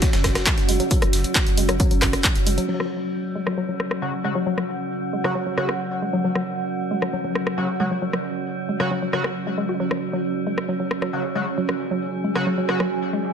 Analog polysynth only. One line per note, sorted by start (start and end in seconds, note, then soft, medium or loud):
4.02 4.12 C#3 medium
4.02 4.12 F#3 medium
4.02 4.12 F#4 medium
4.24 4.34 C#3 medium
4.24 4.34 F#3 medium
4.24 4.34 F#4 medium
5.24 5.34 C#3 medium
5.24 5.34 F#3 medium
5.24 5.34 F#4 loud
5.57 5.67 C#3 medium
5.57 5.67 F#3 medium
5.57 5.67 F#4 medium
7.58 7.67 C#3 medium
7.58 7.67 F#3 medium
7.58 7.67 F#4 medium
7.80 7.90 C#3 medium
7.80 7.90 F#3 medium
7.80 7.90 F#4 medium
8.80 8.89 C#3 medium
8.80 8.89 F#3 medium
8.80 8.89 F#4 loud
9.13 9.23 C#3 medium
9.13 9.23 F#3 medium
9.13 9.23 F#4 medium
11.13 11.23 C#3 medium
11.13 11.23 F#3 medium
11.13 11.23 F#4 medium
11.35 11.45 C#3 medium
11.35 11.45 F#3 medium
11.35 11.45 F#4 medium
12.35 12.45 C#3 medium
12.35 12.45 F#3 medium
12.35 12.45 F#4 loud
12.69 12.78 C#3 medium
12.69 12.78 F#3 medium
12.69 12.78 F#4 medium